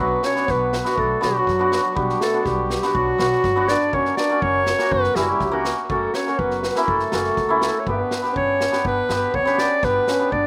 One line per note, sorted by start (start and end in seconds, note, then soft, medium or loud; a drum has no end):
0.00 0.14 B1 medium
0.00 0.17 B3 medium
0.00 0.26 B3 medium
0.00 0.17 D4 soft
0.00 0.18 F#4 medium
0.00 0.27 B4 medium
0.23 0.48 C#4 medium
0.23 0.52 C#5 medium
0.23 snare medium
0.35 0.60 B3 medium
0.35 0.61 D4 medium
0.35 0.61 F#4 medium
0.35 snare soft
0.47 0.78 B1 medium
0.47 0.98 B3 medium
0.47 kick medium
0.47 snare soft
0.51 1.01 B4 medium
0.73 snare medium
0.84 1.03 B3 medium
0.84 1.04 D4 medium
0.84 1.04 F#4 medium
0.84 snare medium
0.96 1.12 B1 medium
0.96 1.23 A3 medium
0.96 1.23 A4 loud
0.96 kick medium
1.21 1.38 B1 medium
1.21 1.32 F#3 medium
1.21 1.40 B3 medium
1.21 1.40 D4 medium
1.21 1.41 F#4 medium
1.21 1.98 F#4 medium
1.21 snare medium
1.31 1.39 G3 medium
1.38 1.97 F#3 medium
1.47 1.77 F#2 medium
1.47 kick medium
1.47 snare soft
1.59 1.77 B3 medium
1.59 1.78 D4 medium
1.59 1.78 F#4 medium
1.72 snare medium
1.95 2.11 B1 medium
1.95 2.22 G3 medium
1.95 2.14 B3 medium
1.95 2.15 D4 medium
1.95 2.15 F#4 medium
1.95 2.21 G4 medium
1.95 kick medium
2.09 snare soft
2.21 2.47 A3 medium
2.21 2.48 A4 medium
2.21 snare medium
2.33 2.58 B3 medium
2.33 2.58 D4 medium
2.33 2.59 F#4 medium
2.45 2.75 B1 medium
2.45 2.87 G3 medium
2.45 2.97 G4 medium
2.45 kick medium
2.45 snare soft
2.70 snare medium
2.82 3.01 B3 medium
2.82 3.02 D4 medium
2.82 3.02 F#4 medium
2.82 snare medium
2.88 2.96 G3 soft
2.94 3.10 B1 loud
2.94 3.68 F#3 medium
2.94 3.71 F#4 loud
2.94 kick medium
3.18 3.34 B1 medium
3.18 3.37 B3 medium
3.18 3.38 D4 medium
3.18 3.38 F#4 medium
3.18 snare medium
3.44 3.74 G1 medium
3.44 kick medium
3.44 snare soft
3.56 3.74 B3 medium
3.56 3.75 D4 medium
3.56 3.75 F#4 medium
3.68 3.96 D4 medium
3.68 3.96 D5 medium
3.68 snare medium
3.93 4.08 F#1 medium
3.93 4.12 A#3 medium
3.93 4.12 C#4 medium
3.93 4.17 C#4 medium
3.93 4.12 F#4 medium
3.93 4.17 C#5 medium
3.93 kick medium
4.05 snare soft
4.17 4.42 D4 medium
4.17 4.44 D5 medium
4.17 snare medium
4.30 4.54 A#3 medium
4.30 4.55 C#4 medium
4.30 4.55 F#4 medium
4.41 4.72 F#1 medium
4.41 4.66 C#4 medium
4.41 4.94 C#5 loud
4.41 kick medium
4.66 4.94 C#4 medium
4.66 snare medium
4.79 4.97 A#3 medium
4.79 4.98 C#4 medium
4.79 4.99 F#4 medium
4.79 snare medium
4.91 5.06 F#1 loud
4.91 5.17 B3 medium
4.91 5.17 B4 loud
4.91 kick medium
5.04 snare soft
5.15 5.31 F#1 medium
5.15 5.30 G3 medium
5.15 5.34 A#3 medium
5.15 5.35 C#4 medium
5.15 5.35 E4 medium
5.15 5.24 G4 medium
5.15 snare medium
5.22 5.31 F#4 medium
5.30 5.61 G3 medium
5.30 5.63 G4 medium
5.40 5.70 C#2 medium
5.40 kick medium
5.40 snare soft
5.51 5.71 A#3 medium
5.51 5.71 C#4 medium
5.51 5.72 F#4 medium
5.65 snare medium
5.89 6.05 F#1 medium
5.89 6.13 A3 medium
5.89 6.08 A#3 medium
5.89 6.09 C#4 medium
5.89 6.09 F#4 medium
5.89 6.16 A4 medium
5.89 kick medium
6.14 6.41 C#4 medium
6.14 6.41 C#5 medium
6.14 snare medium
6.26 6.51 A#3 medium
6.26 6.52 C#4 medium
6.26 6.52 F#4 medium
6.26 snare soft
6.39 6.69 F#1 medium
6.39 6.63 B3 medium
6.39 6.81 B4 medium
6.39 kick medium
6.51 snare soft
6.63 6.89 B3 medium
6.63 snare medium
6.75 6.94 A#3 medium
6.75 6.95 C#4 medium
6.75 6.95 E4 medium
6.75 snare medium
6.81 6.90 B4 medium
6.88 7.03 F#1 medium
6.88 7.88 A3 medium
6.88 7.62 A4 medium
6.88 kick medium
6.99 snare soft
7.12 7.28 F#1 medium
7.12 7.31 A#3 medium
7.12 7.32 C#4 medium
7.12 7.32 F#4 medium
7.12 snare medium
7.24 snare soft
7.37 7.67 C#2 medium
7.37 kick medium
7.37 snare soft
7.49 7.68 A#3 medium
7.49 7.68 C#4 medium
7.49 7.69 E4 medium
7.62 7.81 A4 medium
7.62 snare medium
7.80 7.90 C#5 soft
7.86 8.01 G1 medium
7.86 8.35 B3 medium
7.86 8.05 B3 medium
7.86 8.06 D4 medium
7.86 8.06 G4 medium
7.86 8.37 B4 medium
7.86 kick medium
8.11 snare medium
8.22 8.47 B3 medium
8.22 8.48 D4 medium
8.22 8.48 G4 medium
8.22 snare soft
8.34 8.66 G1 medium
8.34 8.83 C#4 medium
8.34 8.82 C#5 medium
8.34 kick medium
8.61 snare medium
8.71 8.90 B3 medium
8.71 8.91 D4 medium
8.71 8.91 G4 medium
8.71 snare medium
8.84 9.00 G1 medium
8.84 9.30 B3 medium
8.84 9.37 B4 loud
8.84 kick medium
9.09 9.24 G1 medium
9.09 9.28 B3 medium
9.09 9.28 D4 medium
9.09 9.28 G4 medium
9.09 snare medium
9.33 9.64 D2 medium
9.33 9.84 C#4 medium
9.33 9.61 C#5 loud
9.33 kick medium
9.45 9.64 B3 medium
9.45 9.65 D4 medium
9.45 9.65 G4 medium
9.45 snare soft
9.58 9.86 D5 loud
9.58 snare medium
9.82 9.98 G1 medium
9.82 10.07 B3 medium
9.82 10.02 B3 medium
9.82 10.02 D4 medium
9.82 10.03 G4 medium
9.82 10.34 B4 medium
9.82 kick medium
9.82 snare soft
10.07 10.30 C#4 medium
10.07 snare medium
10.19 10.44 B3 medium
10.19 10.45 D4 medium
10.19 10.45 G4 medium
10.32 10.47 G1 medium
10.32 10.47 D4 medium
10.32 10.47 D5 medium
10.32 kick medium